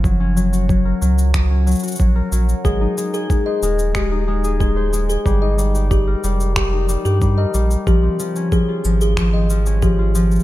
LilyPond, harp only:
\new Staff \with { instrumentName = "Harp" } { \clef bass \time 4/4 \key aes \major \tempo 4 = 92 ges16 des'16 ges16 ges'16 ges16 bes'16 ges8 ges16 des'16 ges16 ges'16 ges16 bes'16 ges8 | aes16 ees'16 aes16 aes'16 aes16 c''16 aes8 aes16 ees'16 aes16 aes'16 aes16 c''16 aes8 | g16 ees'16 g16 g'16 g16 bes'16 g8 g16 ees'16 g16 g'16 g16 bes'16 g8 | f16 c'16 f16 des'16 f16 f'16 f8 f16 c'16 f16 des'16 f16 f'16 f8 | }